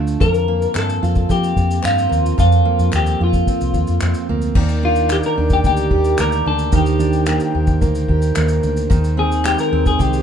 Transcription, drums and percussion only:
0.07 shaker
0.21 kick, shaker
0.34 shaker
0.62 shaker
0.75 finger snap, clap, shaker
0.90 shaker
1.04 shaker
1.15 kick, shaker
1.30 kick, shaker
1.44 shaker
1.57 kick, shaker
1.71 shaker
1.83 finger snap, clap, shaker
1.98 shaker
2.13 shaker
2.26 shaker
2.38 kick, shaker
2.52 shaker
2.79 shaker
2.92 finger snap, clap, shaker
3.06 shaker
3.33 kick, shaker
3.47 kick, shaker
3.61 shaker
3.74 kick, shaker
3.87 shaker
4.00 finger snap, clap, shaker
4.14 shaker
4.42 shaker
4.55 kick, crash
4.69 shaker
4.96 shaker
5.09 finger snap, clap, shaker
5.23 shaker
5.50 kick, shaker
5.64 kick, shaker
5.77 shaker
5.91 kick
6.04 shaker
6.18 finger snap, clap, shaker
6.32 shaker
6.59 shaker
6.72 kick, shaker
6.86 shaker
7.00 shaker
7.13 shaker
7.26 finger snap, clap, shaker
7.40 shaker
7.67 kick, shaker
7.82 kick, shaker
7.95 shaker
8.08 kick
8.22 shaker
8.36 finger snap, clap, shaker
8.48 shaker
8.63 shaker
8.77 shaker
8.91 kick, shaker
9.04 shaker
9.32 shaker
9.45 finger snap, clap, shaker
9.59 shaker
9.86 kick, shaker
10.00 kick, shaker
10.13 shaker

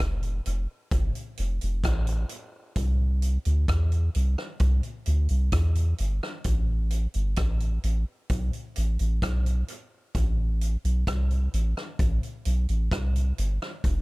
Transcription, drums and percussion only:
0.00 cross-stick
0.23 closed hi-hat
0.46 closed hi-hat
0.91 kick, closed hi-hat
1.15 closed hi-hat
1.37 closed hi-hat
1.61 closed hi-hat
1.84 kick, cross-stick, closed hi-hat
2.07 closed hi-hat
2.29 closed hi-hat
2.76 kick, closed hi-hat
3.22 closed hi-hat
3.45 closed hi-hat
3.68 kick, cross-stick, closed hi-hat
3.92 closed hi-hat
4.15 closed hi-hat
4.38 cross-stick
4.60 kick, closed hi-hat
4.83 closed hi-hat
5.06 closed hi-hat
5.29 closed hi-hat
5.52 kick, cross-stick, closed hi-hat
5.75 closed hi-hat
5.98 closed hi-hat
6.23 cross-stick
6.44 kick, closed hi-hat
6.91 closed hi-hat
7.14 closed hi-hat
7.36 kick, cross-stick, closed hi-hat
7.60 closed hi-hat
7.84 closed hi-hat
8.30 kick, closed hi-hat
8.53 closed hi-hat
8.76 closed hi-hat
8.99 closed hi-hat
9.22 kick, cross-stick, closed hi-hat
9.46 closed hi-hat
9.68 closed hi-hat
10.15 kick, closed hi-hat
10.61 closed hi-hat
10.85 closed hi-hat
11.07 kick, cross-stick, closed hi-hat
11.31 closed hi-hat
11.54 closed hi-hat
11.77 cross-stick
11.99 kick, closed hi-hat
12.23 closed hi-hat
12.45 closed hi-hat
12.69 closed hi-hat
12.91 kick, cross-stick, closed hi-hat
13.16 closed hi-hat
13.38 closed hi-hat
13.62 cross-stick
13.84 kick, closed hi-hat

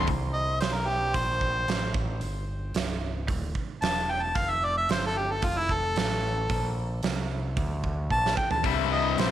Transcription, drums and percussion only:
0.07 kick, open hi-hat
0.61 snare, open hi-hat
1.14 kick, open hi-hat
1.41 kick
1.68 snare, open hi-hat
1.94 kick
2.21 open hi-hat
2.74 snare, open hi-hat
3.28 kick, open hi-hat
3.55 kick
3.82 snare, open hi-hat
4.35 kick, open hi-hat
4.89 snare, open hi-hat
5.42 kick, open hi-hat
5.69 kick
5.96 snare, open hi-hat
6.50 kick, open hi-hat
7.03 snare, open hi-hat
7.57 kick, open hi-hat
7.84 kick
8.10 kick
8.26 snare
8.37 kick
8.51 floor tom
8.64 kick, open hi-hat
9.18 snare, open hi-hat

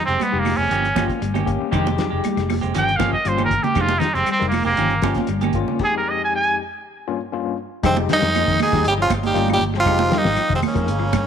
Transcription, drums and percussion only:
0.08 closed hi-hat
0.20 closed hi-hat, high conga, claves
0.45 open hi-hat, high conga, claves
0.71 closed hi-hat
0.85 closed hi-hat
0.96 kick, snare, closed hi-hat, high conga, claves
1.09 kick, closed hi-hat, high conga
1.22 closed hi-hat
1.35 closed hi-hat, high conga, claves
1.47 kick, closed hi-hat
1.73 kick, closed hi-hat, low conga, claves
1.86 closed hi-hat, high conga
1.98 snare, closed hi-hat, low conga
2.24 closed hi-hat, high conga, claves
2.37 snare, closed hi-hat
2.50 open hi-hat, high conga, claves
2.63 closed hi-hat
2.75 closed hi-hat
2.88 closed hi-hat
3.00 kick, snare, closed hi-hat, high conga, claves
3.13 kick
3.25 closed hi-hat
3.38 closed hi-hat, high conga, claves
3.51 kick, closed hi-hat
3.64 closed hi-hat, high conga
3.75 kick, snare, closed hi-hat, low conga, claves
3.89 closed hi-hat, high conga
4.00 snare, closed hi-hat, low conga
4.15 snare, closed hi-hat
4.26 closed hi-hat, claves
4.40 snare
4.51 open hi-hat, high conga, claves
4.77 closed hi-hat
4.90 closed hi-hat
5.02 kick, snare, closed hi-hat, high conga, claves
5.15 kick, snare, closed hi-hat, high conga
5.27 closed hi-hat
5.41 closed hi-hat, high conga, claves
5.53 kick, closed hi-hat
5.68 high conga
5.79 kick, crash
7.83 kick, closed hi-hat, low conga, claves
7.97 high conga
8.09 snare, closed hi-hat, low conga
8.22 snare, closed hi-hat
8.35 closed hi-hat, high conga, claves
8.48 kick, closed hi-hat
8.60 open hi-hat, high conga, claves
8.73 kick, snare, closed hi-hat, low conga
8.85 closed hi-hat
9.10 kick, closed hi-hat, high conga, claves
9.23 closed hi-hat, high conga
9.36 closed hi-hat
9.48 high conga, claves
9.61 closed hi-hat
9.74 snare
9.85 kick, closed hi-hat, low conga, claves
9.99 high conga
10.11 snare, closed hi-hat, low conga
10.25 snare
10.36 closed hi-hat, claves
10.49 kick, closed hi-hat
10.62 open hi-hat, high conga, claves
10.76 kick, closed hi-hat
10.88 closed hi-hat
11.13 kick, snare, closed hi-hat, high conga, claves

